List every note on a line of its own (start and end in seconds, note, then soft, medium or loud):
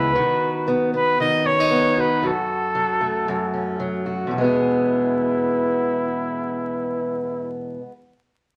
0.00 0.13 C#2 medium
0.00 0.20 C#3 medium
0.00 0.15 E3 medium
0.00 0.15 G#3 medium
0.00 0.21 G#3 medium
0.00 0.67 B3 soft
0.00 0.71 B3 soft
0.00 0.15 E4 medium
0.00 0.21 E4 medium
0.00 0.20 G#4 medium
0.00 0.68 B4 medium
0.15 1.19 D#3 medium
0.15 1.97 F#4 medium
0.67 0.92 B3 medium
0.94 1.70 B3 medium
0.94 1.18 B4 medium
1.20 2.30 D#3 medium
1.20 1.48 D#5 loud
1.45 1.60 C#4 soft
1.45 2.02 C#5 medium
1.60 2.30 D#4 soft
1.71 2.29 B3 medium
1.97 2.23 F#4 medium
1.97 2.28 B4 medium
2.22 3.27 F#2 medium
2.22 4.05 F#4 medium
2.27 3.82 A4 medium
2.75 3.78 F#3 medium
3.01 4.38 A3 soft
3.28 4.27 F#2 medium
3.54 4.38 C#4 soft
3.80 4.38 F#3 medium
4.06 4.38 F#4 soft
4.27 7.77 E2 medium
4.27 7.81 B2 medium
4.34 7.50 E4 medium
4.38 7.88 G#3 medium
4.38 7.91 B3 medium
4.44 7.94 G#4 medium